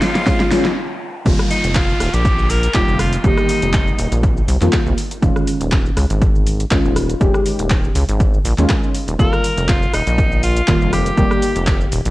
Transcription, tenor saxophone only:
0.02 0.51 F4 medium
1.51 1.77 D#4 medium
1.75 2.15 F4 loud
2.14 2.51 G4 loud
2.50 2.74 A#4 loud
2.75 2.98 G4 loud
3.00 3.18 F4 loud
3.18 3.26 F4 medium
3.24 4.23 D#4 loud
9.19 9.70 A#4 loud
9.69 9.93 F4 loud
9.94 10.40 D#4 loud
10.43 10.89 F4 loud
10.93 11.88 G4 loud

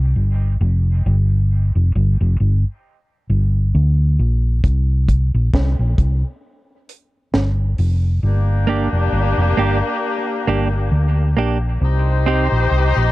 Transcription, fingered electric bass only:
0.00 0.13 C2 medium
0.16 0.58 G1 medium
0.61 1.02 F1 loud
1.06 1.72 G1 loud
1.75 1.94 F1 medium
1.95 2.19 G1 loud
2.21 2.39 F1 loud
2.40 2.63 G1 medium
3.30 3.71 G1 medium
3.75 4.16 D2 medium
4.19 4.61 A#1 medium
4.64 5.30 C2 loud
5.34 5.53 A#1 medium
5.54 5.77 C2 medium
5.79 5.97 A#1 medium
5.99 6.22 C2 medium
7.34 7.75 G1 medium
7.78 8.20 F1 medium
8.23 8.89 G1 medium
8.92 9.11 F1 medium
9.12 9.36 G1 medium
9.38 9.56 F1 medium
9.57 9.81 G1 medium
10.47 10.89 G1 medium
10.92 11.34 D2 medium
11.37 11.79 A#1 medium
11.81 12.48 C2 medium
12.52 12.70 A#1 medium
12.71 12.95 C2 medium
12.96 13.12 A#1 medium

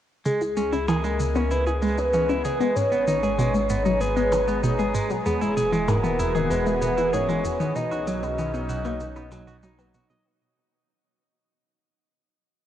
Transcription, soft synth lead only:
0.26 0.90 G#4 medium
0.88 1.52 A#4 medium
1.51 2.77 B4 loud
2.75 4.02 C#5 loud
4.01 4.95 B4 medium
5.26 5.90 G#4 medium
5.88 6.53 A#4 medium
6.51 7.15 B4 medium
7.13 7.75 C#5 loud
7.76 9.59 D#5 loud

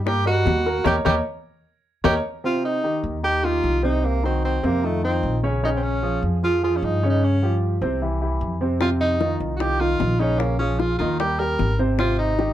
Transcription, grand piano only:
0.06 0.22 A#3 medium
0.06 0.23 A#4 medium
0.06 0.23 A#5 medium
0.26 0.58 G3 medium
0.26 0.59 A#4 medium
0.26 0.59 D#5 medium
0.66 0.82 A#3 medium
0.66 0.82 A#4 medium
0.66 0.82 A#5 medium
0.84 0.98 A#4 loud
0.84 0.98 C#5 loud
0.84 0.98 D#5 loud
1.05 1.18 A#4 loud
1.05 1.18 C#5 loud
1.05 1.18 D#5 loud
2.04 2.17 A#4 loud
2.04 2.17 C#5 loud
2.04 2.17 D#5 loud
2.44 2.77 C3 medium
2.44 2.77 C4 medium
2.44 2.77 C5 medium
2.83 3.16 D#3 medium
2.83 3.17 D#4 medium
2.83 3.17 G4 medium
3.23 3.40 D#3 medium
3.23 3.40 D#4 medium
3.23 3.40 G4 medium
3.43 3.76 D#3 medium
3.43 3.76 D#4 medium
3.43 3.77 G4 medium
3.83 4.16 C3 medium
3.83 4.16 C4 medium
3.83 4.16 C5 medium
4.23 4.56 D#3 medium
4.23 4.56 D#4 medium
4.23 4.56 F#4 medium
4.63 4.80 C3 medium
4.63 4.80 C4 medium
4.63 4.80 C5 medium
4.83 5.00 D#3 medium
4.83 5.00 D#4 medium
4.83 5.00 F4 medium
5.04 5.36 D#3 medium
5.04 5.36 D#4 medium
5.04 5.36 F4 medium
5.43 5.59 C#3 medium
5.43 5.60 C#4 medium
5.43 5.60 C#5 medium
5.63 5.96 C#3 medium
5.63 5.96 C#4 medium
5.63 5.96 C#5 medium
6.02 6.35 F3 medium
6.02 6.35 F4 medium
6.02 6.36 G#4 medium
6.43 6.59 F3 medium
6.43 6.59 F4 medium
6.43 6.59 G#4 medium
6.63 6.95 F3 medium
6.63 6.95 F4 medium
6.63 6.96 G#4 medium
7.03 7.35 C#3 medium
7.03 7.35 C#4 medium
7.03 7.35 C#5 medium
7.42 7.75 F3 medium
7.42 7.75 F4 medium
7.42 7.75 G4 medium
7.82 7.98 C3 medium
7.82 7.98 C4 medium
7.82 7.98 C5 medium
8.02 8.18 E3 medium
8.02 8.18 E4 medium
8.02 8.18 G4 medium
8.21 8.54 E3 medium
8.21 8.54 E4 medium
8.21 8.54 G4 medium
8.61 8.77 C3 medium
8.61 8.77 C4 medium
8.61 8.78 C5 medium
8.81 9.13 C3 medium
8.81 9.14 C4 medium
8.81 9.14 C5 medium
9.20 9.53 D#3 medium
9.20 9.53 D#4 medium
9.20 9.53 F4 medium
9.60 9.76 D#3 medium
9.60 9.77 D#4 medium
9.60 9.77 F4 medium
9.80 10.13 D#3 medium
9.80 10.13 D#4 medium
9.80 10.13 F4 medium
10.20 10.53 C#3 medium
10.20 10.53 C#4 medium
10.20 10.53 C#5 medium
10.59 10.92 F3 medium
10.59 10.92 F4 medium
10.59 10.92 G#4 medium
11.00 11.16 D#3 medium
11.00 11.16 D#4 medium
11.00 11.16 D#5 medium
11.20 11.36 G3 medium
11.20 11.36 G4 medium
11.20 11.36 A#4 medium
11.39 11.72 G3 medium
11.39 11.72 G4 medium
11.39 11.72 A#4 medium
11.79 11.95 C3 medium
11.79 11.96 C4 medium
11.79 11.96 C5 medium
11.98 12.31 C3 medium
11.98 12.32 C4 medium
11.98 12.32 C5 medium
12.38 12.53 D#3 medium
12.38 12.53 D#4 medium
12.38 12.53 G4 medium

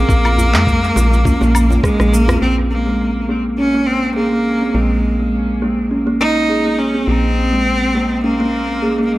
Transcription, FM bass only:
0.09 0.56 A#1 loud
0.54 0.92 F2 medium
0.96 1.36 A#1 medium
1.42 1.79 A#1 loud
2.00 2.38 A#1 loud
2.42 4.72 A#1 medium
4.74 7.05 A#1 medium
7.08 9.18 A#1 medium

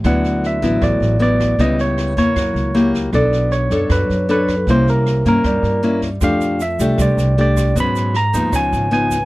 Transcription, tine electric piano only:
0.06 0.45 F#5 medium
0.46 0.84 E5 medium
0.83 1.21 D5 medium
1.22 1.61 D5 medium
1.61 1.80 D#5 medium
1.81 2.17 C#5 medium
2.18 2.91 C#5 medium
3.15 3.54 D5 medium
3.52 3.91 C#5 medium
3.92 4.30 B4 medium
4.31 4.70 B4 medium
4.71 4.89 C5 medium
4.90 5.27 A#4 medium
5.28 6.00 A#4 medium
6.24 6.62 F5 medium
6.62 7.01 E5 medium
7.02 7.40 D5 medium
7.41 7.75 D5 medium
7.80 8.18 B5 medium
8.16 8.55 A#5 medium
8.56 8.92 G#5 medium
8.93 9.25 G#5 medium

